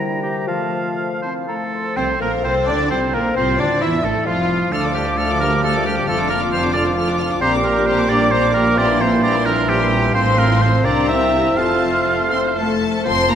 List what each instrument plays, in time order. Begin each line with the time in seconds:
Already playing: bassoon C3, harp C3 A#4, french horn section G3, flute G5, oboe A#5
0.00 harp A#3, clarinet E4
0.23 clarinet G4, harp G4 C5
0.47 bassoon F3, harp F3, french horn section A3, clarinet F4, oboe F5, flute A5
0.73 harp C5
0.98 harp F4
1.22 french horn section C4, harp E4, oboe C5, flute A5
1.48 french horn section A3, harp F4, oboe A4, flute A#5
1.73 harp C5, flute C6
1.95 double bass section C2, cello section C3, harp F3, violin section C4 C5, bassoon C4, viola section C4, french horn section C4, clarinet A4, oboe C5, flute C5
2.20 double bass section A#1, cello section A#2, violin section A#3 A#4, bassoon A#3, viola section A#3, french horn section A#3, flute A#4, oboe A#4, harp C5
2.44 double bass section C2, cello section C3, bassoon C4, viola section C4, violin section C4 C5, french horn section C4, harp F4, oboe C5, flute C5
2.67 double bass section D2, cello section D3, viola section D4, bassoon D4, violin section D4 D5, french horn section D4, harp E4, oboe D5, flute D5
2.90 double bass section C2, cello section C3, viola section C4, violin section C4 C5, bassoon C4, french horn section C4, harp F4, oboe C5, flute C5
3.13 double bass section A#1, cello section A#2, bassoon A#3, violin section A#3 A#4, viola section A#3, french horn section A#3, oboe A#4, flute A#4, harp C5
3.35 double bass section C2, harp A2, cello section C3, violin section C4 C5, bassoon C4, viola section C4, french horn section C4, clarinet F4, oboe C5, flute C5
3.59 double bass section D2, cello section D3, viola section D4, violin section D4 D5, bassoon D4, french horn section D4, harp F4, oboe D5, flute D5
3.81 double bass section E2, cello section E3, harp A3, violin section E4 E5, bassoon E4, viola section E4, french horn section E4, oboe E5, flute E5
4.03 double bass section A1, cello section A2, harp G3, bassoon A3, viola section A3, violin section A3 A4, french horn section A3, clarinet E4, oboe A4, flute A4
4.26 double bass section F1, cello section F2, bassoon F3, viola section F3, french horn section F3, harp A3, oboe F4, violin section F4, flute F4
4.72 double bass section D2, cello section D2, harp D3, bassoon F3, french horn section A3, viola section D4, clarinet D4, oboe A4, violin section A4 F6, flute D6
4.83 viola section F4, violin section D5 D6
4.95 french horn section G3, viola section D4, harp F4, oboe G4, violin section A4 F6
5.06 viola section F4, violin section D5 D6
5.17 harp A3, french horn section A3, viola section D4, violin section A4 F6, oboe A4
5.29 viola section F4, violin section D5 D6
5.39 harp G3, french horn section A#3, viola section D4, clarinet G4, violin section A4 F6, oboe A#4
5.51 viola section F4, violin section D5 D6
5.62 harp A3, french horn section A3, viola section D4, violin section A4 F6, oboe A4
5.73 viola section F4, violin section D5 D6
5.85 french horn section G3, viola section D4, harp F4, oboe G4, violin section A4 F6
5.96 viola section F4, violin section D5 D6
6.07 double bass section F1, cello section F2, bassoon F3, harp F3, french horn section A3, viola section F4, clarinet F4, violin section A4 F6, oboe A4, flute D6
6.17 viola section D4, violin section F4 D6
6.29 french horn section A#3, viola section F4, violin section A4 F6, oboe A#4, harp D5
6.41 viola section D4, violin section F4 D6
6.51 french horn section C4, harp D4, viola section F4, violin section A4 F6, oboe C5
6.63 viola section D4, violin section F4 D6
6.73 bassoon F3, harp C4, french horn section D4, clarinet F4, viola section F4, violin section A4 F6, oboe D5, flute D6
6.85 viola section D4, violin section F4 D6
6.96 harp D4, viola section F4, violin section A4 F6
7.07 viola section D4, violin section F4 D6
7.18 viola section F4, violin section A4 F6, harp D5
7.29 viola section D4, violin section F4 D6
7.40 double bass section A#1, cello section A#2, harp A#2, bassoon G3, viola section A#3, french horn section C4, clarinet G4, violin section G4 A#5, oboe C5, flute D6
7.53 viola section D4, violin section A#4 D6
7.64 french horn section A#3, viola section A#3, harp D4, violin section G4 A#5, oboe A#4
7.75 viola section D4, violin section A#4 D6
7.86 harp G3, viola section A#3, french horn section C4, violin section G4 A#5, oboe C5
7.97 viola section D4, violin section A#4 D6
8.07 harp F3, bassoon G3, viola section A#3, french horn section D4, violin section G4 A#5, oboe D5, flute D6
8.20 viola section D4, violin section A#4 D6
8.31 harp G3, viola section A#3, french horn section C4, violin section G4 A#5, oboe C5
8.43 viola section D4, violin section A#4 D6
8.53 viola section A#3, french horn section A#3, harp D4, violin section G4 A#5, oboe A#4
8.65 viola section D4, violin section A#4 D6
8.76 harp A#2, bassoon E3, clarinet A#3, viola section C4, french horn section D4, violin section G4 A#5, oboe D5, flute C6
8.87 viola section E4, violin section A#4 C6
8.99 viola section C4, french horn section C4, harp E4, violin section G4 A#5, oboe C5
9.11 viola section E4, violin section A#4 C6
9.21 harp G3, viola section C4, french horn section D4, violin section G4 A#5, oboe D5
9.33 viola section E4, violin section A#4 C6
9.45 bassoon E3, harp F3, french horn section A#3, viola section C4, clarinet D4, violin section G4 A#5, oboe A#4, flute C6
9.57 viola section E4, violin section A#4 C6
9.68 harp G3, french horn section G3, viola section C4, violin section G4 A#5, oboe G4
9.80 viola section E4, violin section A#4 C6
9.91 viola section C4, harp E4, violin section G4 A#5
10.03 viola section E4, violin section A#4 C6
10.14 double bass section A1, harp A2, cello section A2, bassoon F3, clarinet C4, french horn section C4, viola section C4, violin section F4 C6, oboe C5, flute C6
10.38 harp A3, french horn section A#3, oboe A#4
10.61 french horn section C4, harp C5, oboe C5
10.84 double bass section C2, harp C3, cello section C3, bassoon A#3, viola section C4, french horn section D4, violin section G4 A#5, oboe D5, flute C6
11.09 harp A#3, french horn section E4, oboe E5
11.33 harp G4 C5
11.57 double bass section F1, cello section F2, harp F3, bassoon A3, viola section C4, violin section F4 A5, french horn section F4, clarinet A4, oboe F5, flute C6
11.82 harp C5
12.07 harp F4
12.32 cello section C4, french horn section C4, harp E4, violin section C5 C6
12.56 french horn section A3, cello section A3, harp F4, violin section A4 A5
12.80 harp C5
13.05 double bass section F1, harp F3, bassoon F3, french horn section C4, cello section C4, clarinet F4, oboe C5, violin section C5 C6, flute A5
13.28 french horn section A#3, cello section A#3, violin section A#4 A#5, harp C5